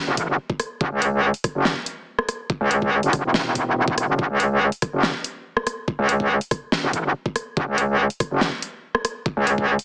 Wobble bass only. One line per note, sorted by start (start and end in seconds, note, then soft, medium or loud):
0.07 0.16 F#1 loud
0.17 0.27 A1 loud
0.28 0.37 F#1 medium
0.81 0.90 F#1 loud
0.92 1.32 C#2 loud
1.55 1.75 F#1 loud
2.61 3.01 C#2 loud
3.03 3.22 F#1 medium
3.24 4.07 E1 loud
4.09 4.17 F#1 loud
4.19 4.28 F#1 loud
4.30 4.70 C#2 loud
4.93 5.13 F#1 loud
5.99 6.39 C#2 loud
6.83 6.92 F#1 loud
6.93 7.03 A1 medium
7.04 7.13 F#1 medium
7.57 7.66 F#1 loud
7.68 8.08 C#2 loud
8.31 8.51 F#1 loud
9.37 9.77 C#2 loud